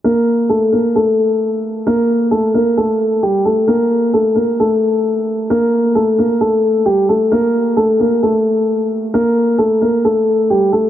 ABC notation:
X:1
M:4/4
L:1/8
Q:1/4=132
K:Gm
V:1 name="Grand piano"
[B,B]2 [A,A] [B,B] [A,A]4 | [B,B]2 [A,A] [B,B] [A,A]2 [G,G] [A,A] | [B,B]2 [A,A] [B,B] [A,A]4 | [B,B]2 [A,A] [B,B] [A,A]2 [G,G] [A,A] |
[B,B]2 [A,A] [B,B] [A,A]4 | [B,B]2 [A,A] [B,B] [A,A]2 [G,G] [A,A] |]